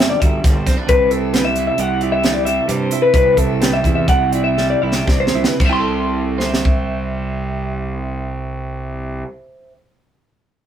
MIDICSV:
0, 0, Header, 1, 5, 480
1, 0, Start_track
1, 0, Tempo, 447427
1, 955, Time_signature, 5, 2, 24, 8
1, 2877, Tempo, 471328
1, 4797, Tempo, 509338
1, 5757, Tempo, 525855
1, 10392, End_track
2, 0, Start_track
2, 0, Title_t, "Clean electric guitar"
2, 0, Program_c, 0, 27
2, 106, Note_on_c, 0, 74, 62
2, 217, Note_off_c, 0, 74, 0
2, 217, Note_on_c, 0, 76, 56
2, 477, Note_off_c, 0, 76, 0
2, 477, Note_on_c, 0, 74, 70
2, 600, Note_off_c, 0, 74, 0
2, 600, Note_on_c, 0, 72, 65
2, 835, Note_off_c, 0, 72, 0
2, 835, Note_on_c, 0, 71, 53
2, 944, Note_off_c, 0, 71, 0
2, 957, Note_on_c, 0, 71, 85
2, 1198, Note_off_c, 0, 71, 0
2, 1198, Note_on_c, 0, 69, 67
2, 1433, Note_off_c, 0, 69, 0
2, 1433, Note_on_c, 0, 71, 63
2, 1553, Note_off_c, 0, 71, 0
2, 1553, Note_on_c, 0, 76, 61
2, 1783, Note_off_c, 0, 76, 0
2, 1796, Note_on_c, 0, 76, 58
2, 1926, Note_off_c, 0, 76, 0
2, 1926, Note_on_c, 0, 78, 69
2, 2167, Note_off_c, 0, 78, 0
2, 2167, Note_on_c, 0, 74, 67
2, 2273, Note_off_c, 0, 74, 0
2, 2277, Note_on_c, 0, 76, 70
2, 2505, Note_off_c, 0, 76, 0
2, 2509, Note_on_c, 0, 74, 62
2, 2628, Note_off_c, 0, 74, 0
2, 2632, Note_on_c, 0, 76, 66
2, 2875, Note_off_c, 0, 76, 0
2, 2875, Note_on_c, 0, 74, 68
2, 2978, Note_off_c, 0, 74, 0
2, 2978, Note_on_c, 0, 72, 58
2, 3219, Note_off_c, 0, 72, 0
2, 3224, Note_on_c, 0, 71, 61
2, 3337, Note_off_c, 0, 71, 0
2, 3349, Note_on_c, 0, 71, 85
2, 3585, Note_off_c, 0, 71, 0
2, 3585, Note_on_c, 0, 69, 62
2, 3825, Note_off_c, 0, 69, 0
2, 3825, Note_on_c, 0, 71, 57
2, 3941, Note_off_c, 0, 71, 0
2, 3949, Note_on_c, 0, 76, 53
2, 4159, Note_off_c, 0, 76, 0
2, 4172, Note_on_c, 0, 76, 50
2, 4298, Note_off_c, 0, 76, 0
2, 4311, Note_on_c, 0, 78, 64
2, 4547, Note_off_c, 0, 78, 0
2, 4547, Note_on_c, 0, 74, 67
2, 4663, Note_off_c, 0, 74, 0
2, 4667, Note_on_c, 0, 76, 59
2, 4912, Note_off_c, 0, 76, 0
2, 4924, Note_on_c, 0, 74, 63
2, 5035, Note_off_c, 0, 74, 0
2, 5035, Note_on_c, 0, 76, 59
2, 5268, Note_off_c, 0, 76, 0
2, 5268, Note_on_c, 0, 74, 69
2, 5389, Note_off_c, 0, 74, 0
2, 5396, Note_on_c, 0, 72, 62
2, 5646, Note_off_c, 0, 72, 0
2, 5646, Note_on_c, 0, 71, 60
2, 5775, Note_off_c, 0, 71, 0
2, 5775, Note_on_c, 0, 72, 56
2, 5814, Note_off_c, 0, 72, 0
2, 5814, Note_on_c, 0, 76, 56
2, 5856, Note_off_c, 0, 76, 0
2, 5856, Note_on_c, 0, 79, 57
2, 5886, Note_on_c, 0, 84, 58
2, 9179, Note_off_c, 0, 84, 0
2, 9185, Note_off_c, 0, 79, 0
2, 10392, End_track
3, 0, Start_track
3, 0, Title_t, "Clean electric guitar"
3, 0, Program_c, 1, 27
3, 0, Note_on_c, 1, 43, 64
3, 0, Note_on_c, 1, 55, 56
3, 0, Note_on_c, 1, 62, 54
3, 0, Note_on_c, 1, 66, 51
3, 0, Note_on_c, 1, 71, 63
3, 234, Note_off_c, 1, 66, 0
3, 247, Note_on_c, 1, 66, 46
3, 466, Note_off_c, 1, 43, 0
3, 479, Note_on_c, 1, 43, 52
3, 713, Note_off_c, 1, 62, 0
3, 718, Note_on_c, 1, 60, 51
3, 826, Note_off_c, 1, 60, 0
3, 826, Note_on_c, 1, 62, 50
3, 931, Note_off_c, 1, 66, 0
3, 932, Note_on_c, 1, 48, 68
3, 944, Note_off_c, 1, 71, 0
3, 950, Note_off_c, 1, 62, 0
3, 956, Note_off_c, 1, 43, 0
3, 1192, Note_on_c, 1, 64, 52
3, 1432, Note_off_c, 1, 55, 0
3, 1436, Note_on_c, 1, 55, 63
3, 1692, Note_off_c, 1, 64, 0
3, 1697, Note_on_c, 1, 64, 49
3, 1926, Note_on_c, 1, 67, 57
3, 2175, Note_off_c, 1, 64, 0
3, 2179, Note_on_c, 1, 64, 52
3, 2400, Note_off_c, 1, 55, 0
3, 2405, Note_on_c, 1, 55, 62
3, 2646, Note_off_c, 1, 67, 0
3, 2650, Note_on_c, 1, 67, 48
3, 2885, Note_off_c, 1, 48, 0
3, 2889, Note_on_c, 1, 48, 61
3, 3119, Note_off_c, 1, 64, 0
3, 3123, Note_on_c, 1, 64, 55
3, 3354, Note_off_c, 1, 48, 0
3, 3358, Note_on_c, 1, 48, 70
3, 3589, Note_off_c, 1, 64, 0
3, 3593, Note_on_c, 1, 64, 50
3, 3818, Note_off_c, 1, 55, 0
3, 3830, Note_on_c, 1, 55, 59
3, 4065, Note_off_c, 1, 64, 0
3, 4081, Note_on_c, 1, 64, 53
3, 4309, Note_off_c, 1, 67, 0
3, 4313, Note_on_c, 1, 67, 56
3, 4560, Note_off_c, 1, 64, 0
3, 4573, Note_on_c, 1, 64, 51
3, 4798, Note_off_c, 1, 55, 0
3, 4809, Note_on_c, 1, 55, 58
3, 5033, Note_off_c, 1, 64, 0
3, 5037, Note_off_c, 1, 67, 0
3, 5044, Note_on_c, 1, 64, 49
3, 5155, Note_off_c, 1, 64, 0
3, 5155, Note_on_c, 1, 67, 34
3, 5261, Note_off_c, 1, 48, 0
3, 5273, Note_on_c, 1, 48, 57
3, 5535, Note_on_c, 1, 64, 49
3, 5740, Note_off_c, 1, 64, 0
3, 5760, Note_off_c, 1, 67, 0
3, 5761, Note_off_c, 1, 48, 0
3, 5772, Note_on_c, 1, 48, 60
3, 5804, Note_off_c, 1, 55, 0
3, 5815, Note_on_c, 1, 55, 59
3, 5860, Note_on_c, 1, 64, 52
3, 5904, Note_on_c, 1, 67, 52
3, 5952, Note_on_c, 1, 69, 46
3, 6481, Note_off_c, 1, 64, 0
3, 6485, Note_on_c, 1, 72, 60
3, 6534, Note_off_c, 1, 67, 0
3, 6538, Note_on_c, 1, 76, 53
3, 6587, Note_off_c, 1, 69, 0
3, 6591, Note_on_c, 1, 79, 59
3, 9101, Note_off_c, 1, 48, 0
3, 9144, Note_off_c, 1, 55, 0
3, 9531, Note_off_c, 1, 72, 0
3, 9557, Note_off_c, 1, 76, 0
3, 9584, Note_off_c, 1, 79, 0
3, 10392, End_track
4, 0, Start_track
4, 0, Title_t, "Fingered electric bass"
4, 0, Program_c, 2, 33
4, 0, Note_on_c, 2, 31, 74
4, 153, Note_off_c, 2, 31, 0
4, 234, Note_on_c, 2, 31, 63
4, 447, Note_off_c, 2, 31, 0
4, 478, Note_on_c, 2, 31, 74
4, 689, Note_off_c, 2, 31, 0
4, 720, Note_on_c, 2, 35, 79
4, 824, Note_off_c, 2, 35, 0
4, 953, Note_on_c, 2, 36, 98
4, 1801, Note_off_c, 2, 36, 0
4, 1913, Note_on_c, 2, 36, 78
4, 2766, Note_off_c, 2, 36, 0
4, 2878, Note_on_c, 2, 43, 76
4, 3083, Note_off_c, 2, 43, 0
4, 3345, Note_on_c, 2, 36, 84
4, 3553, Note_off_c, 2, 36, 0
4, 3585, Note_on_c, 2, 36, 75
4, 4006, Note_off_c, 2, 36, 0
4, 4064, Note_on_c, 2, 40, 75
4, 4277, Note_off_c, 2, 40, 0
4, 4302, Note_on_c, 2, 36, 73
4, 4952, Note_off_c, 2, 36, 0
4, 5046, Note_on_c, 2, 36, 61
4, 5250, Note_off_c, 2, 36, 0
4, 5278, Note_on_c, 2, 36, 71
4, 5489, Note_off_c, 2, 36, 0
4, 5514, Note_on_c, 2, 36, 70
4, 5621, Note_off_c, 2, 36, 0
4, 5775, Note_on_c, 2, 36, 89
4, 9068, Note_off_c, 2, 36, 0
4, 10392, End_track
5, 0, Start_track
5, 0, Title_t, "Drums"
5, 4, Note_on_c, 9, 38, 90
5, 111, Note_off_c, 9, 38, 0
5, 233, Note_on_c, 9, 36, 72
5, 237, Note_on_c, 9, 42, 55
5, 340, Note_off_c, 9, 36, 0
5, 344, Note_off_c, 9, 42, 0
5, 474, Note_on_c, 9, 36, 97
5, 482, Note_on_c, 9, 42, 73
5, 492, Note_on_c, 9, 38, 28
5, 582, Note_off_c, 9, 36, 0
5, 590, Note_off_c, 9, 42, 0
5, 599, Note_off_c, 9, 38, 0
5, 714, Note_on_c, 9, 36, 64
5, 717, Note_on_c, 9, 42, 57
5, 727, Note_on_c, 9, 38, 31
5, 821, Note_off_c, 9, 36, 0
5, 825, Note_off_c, 9, 42, 0
5, 834, Note_off_c, 9, 38, 0
5, 951, Note_on_c, 9, 42, 63
5, 954, Note_on_c, 9, 36, 99
5, 1058, Note_off_c, 9, 42, 0
5, 1061, Note_off_c, 9, 36, 0
5, 1191, Note_on_c, 9, 42, 56
5, 1298, Note_off_c, 9, 42, 0
5, 1435, Note_on_c, 9, 42, 64
5, 1445, Note_on_c, 9, 38, 75
5, 1543, Note_off_c, 9, 42, 0
5, 1552, Note_off_c, 9, 38, 0
5, 1670, Note_on_c, 9, 42, 51
5, 1777, Note_off_c, 9, 42, 0
5, 1910, Note_on_c, 9, 42, 68
5, 2017, Note_off_c, 9, 42, 0
5, 2156, Note_on_c, 9, 42, 42
5, 2263, Note_off_c, 9, 42, 0
5, 2399, Note_on_c, 9, 42, 54
5, 2409, Note_on_c, 9, 38, 73
5, 2506, Note_off_c, 9, 42, 0
5, 2516, Note_off_c, 9, 38, 0
5, 2645, Note_on_c, 9, 42, 53
5, 2752, Note_off_c, 9, 42, 0
5, 2884, Note_on_c, 9, 42, 66
5, 2986, Note_off_c, 9, 42, 0
5, 3110, Note_on_c, 9, 42, 57
5, 3212, Note_off_c, 9, 42, 0
5, 3342, Note_on_c, 9, 36, 93
5, 3347, Note_on_c, 9, 42, 63
5, 3443, Note_off_c, 9, 36, 0
5, 3449, Note_off_c, 9, 42, 0
5, 3580, Note_on_c, 9, 36, 64
5, 3584, Note_on_c, 9, 42, 61
5, 3682, Note_off_c, 9, 36, 0
5, 3686, Note_off_c, 9, 42, 0
5, 3829, Note_on_c, 9, 42, 69
5, 3838, Note_on_c, 9, 38, 81
5, 3931, Note_off_c, 9, 42, 0
5, 3940, Note_off_c, 9, 38, 0
5, 4058, Note_on_c, 9, 36, 60
5, 4067, Note_on_c, 9, 42, 46
5, 4160, Note_off_c, 9, 36, 0
5, 4169, Note_off_c, 9, 42, 0
5, 4301, Note_on_c, 9, 36, 79
5, 4303, Note_on_c, 9, 42, 69
5, 4403, Note_off_c, 9, 36, 0
5, 4405, Note_off_c, 9, 42, 0
5, 4551, Note_on_c, 9, 42, 54
5, 4653, Note_off_c, 9, 42, 0
5, 4808, Note_on_c, 9, 38, 47
5, 4902, Note_off_c, 9, 38, 0
5, 5129, Note_on_c, 9, 38, 61
5, 5223, Note_off_c, 9, 38, 0
5, 5276, Note_on_c, 9, 36, 76
5, 5285, Note_on_c, 9, 38, 53
5, 5370, Note_off_c, 9, 36, 0
5, 5379, Note_off_c, 9, 38, 0
5, 5460, Note_on_c, 9, 38, 71
5, 5554, Note_off_c, 9, 38, 0
5, 5621, Note_on_c, 9, 38, 75
5, 5715, Note_off_c, 9, 38, 0
5, 5770, Note_on_c, 9, 36, 86
5, 5780, Note_on_c, 9, 49, 74
5, 5861, Note_off_c, 9, 36, 0
5, 5871, Note_off_c, 9, 49, 0
5, 6502, Note_on_c, 9, 38, 49
5, 6593, Note_off_c, 9, 38, 0
5, 6626, Note_on_c, 9, 38, 63
5, 6717, Note_off_c, 9, 38, 0
5, 6729, Note_on_c, 9, 36, 73
5, 6821, Note_off_c, 9, 36, 0
5, 10392, End_track
0, 0, End_of_file